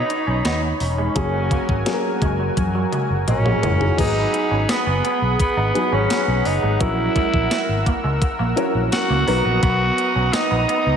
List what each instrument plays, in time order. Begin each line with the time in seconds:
Already playing: grand piano D#3 B3 C#4 F#4, tenor saxophone D#4, analog synth pad D#4 C#5 B5
0.10 muted clean electric guitar stroke, closed hi-hat
0.27 fingered electric bass B1, clean electric guitar C#4
0.45 fingered electric bass D#2, clean electric guitar B3, tenor saxophone D#4, snare, closed hi-hat
0.63 muted clean electric guitar stroke
0.80 fingered electric bass E1, tenor saxophone C#4, open hi-hat
0.98 clean electric guitar G#3
1.15 fingered electric bass F#1, grand piano F#3 A#3 C#4 G#4, clean electric guitar F#3, analog synth pad F#4 A#4 G#5, kick, closed hi-hat
1.51 clean electric guitar A#3, kick, closed hi-hat
1.69 fingered electric bass G#1, muted clean electric guitar stroke, kick
1.86 grand piano F#3 A#3 C#4 G#4, muted clean electric guitar stroke, snare, closed hi-hat
1.94 grand piano A#4
2.22 fingered electric bass F#1, clean electric guitar G#3, kick, closed hi-hat
2.40 clean electric guitar F#3
2.57 fingered electric bass F#2, muted clean electric guitar stroke, kick, closed hi-hat, high tom
2.75 clean electric guitar F#3
2.92 clean electric guitar G#3, closed hi-hat, mid tom
3.10 fingered electric bass F#1
3.27 fingered electric bass A#1, tenor saxophone C#4, grand piano A#4 D#5, muted clean electric guitar stroke, closed hi-hat, mid tom
3.45 clean electric guitar A#3, grand piano G#4 C#5, mid tom
3.62 fingered electric bass F#1, clean electric guitar G#3, grand piano E4 A#4, closed hi-hat, floor tom
3.80 grand piano D#4 G#4, floor tom
3.97 fingered electric bass G#1, grand piano F#3 B3 D#4 G#4, clean electric guitar G#3, tenor saxophone D#4, analog synth pad G#4 F#5 B5, kick, closed hi-hat, crash
4.34 muted clean electric guitar stroke, closed hi-hat
4.51 fingered electric bass G#1, clean electric guitar C#4
4.69 tenor saxophone B3, muted clean electric guitar stroke, snare, closed hi-hat, tambourine
4.87 fingered electric bass F#1, clean electric guitar B3
5.04 clean electric guitar B3, closed hi-hat
5.22 fingered electric bass B1
5.40 tenor saxophone B3, kick, closed hi-hat
5.57 fingered electric bass G#1, clean electric guitar D#4
5.74 grand piano F#3 B3 D#4 G#4, muted clean electric guitar stroke, closed hi-hat
5.92 fingered electric bass G#1, clean electric guitar C#4, tenor saxophone C#4
6.10 clean electric guitar B3, snare, closed hi-hat, tambourine
6.28 fingered electric bass B1, muted clean electric guitar stroke
6.45 fingered electric bass F#1, tenor saxophone D#4, open hi-hat
6.63 fingered electric bass G#1, clean electric guitar G#3
6.80 fingered electric bass A#1, grand piano F#3 C#4 E4 A#4, clean electric guitar F#3, tenor saxophone E4, analog synth pad A#4 E6, kick, closed hi-hat
7.16 clean electric guitar G#3, kick, closed hi-hat
7.33 fingered electric bass A#1, muted clean electric guitar stroke, kick
7.51 muted clean electric guitar stroke, snare, closed hi-hat, tambourine
7.69 fingered electric bass G#1
7.86 clean electric guitar A#3, kick, closed hi-hat
8.04 fingered electric bass C#2, clean electric guitar G#3
8.22 muted clean electric guitar stroke, kick, closed hi-hat
8.39 fingered electric bass A#1, clean electric guitar A#3
8.56 grand piano F#3 C#4 E4 A#4, clean electric guitar F#3, closed hi-hat
8.75 fingered electric bass A#1
8.92 tenor saxophone F#4, muted clean electric guitar stroke, snare, closed hi-hat, tambourine
9.10 fingered electric bass C#2, clean electric guitar A#3
9.27 fingered electric bass B1, grand piano F#3 B3 D#4 A#4, clean electric guitar B3, analog synth pad B3 A#5 D#6, open hi-hat
9.45 fingered electric bass A#1
9.62 fingered electric bass B1, clean electric guitar B3, tenor saxophone F#4, kick, closed hi-hat
9.98 muted clean electric guitar stroke, closed hi-hat
10.16 fingered electric bass B1, clean electric guitar C#4
10.33 tenor saxophone D#4, muted clean electric guitar stroke, snare, closed hi-hat, tambourine
10.51 fingered electric bass A#1, clean electric guitar B3
10.69 clean electric guitar B3, closed hi-hat
10.86 fingered electric bass C#2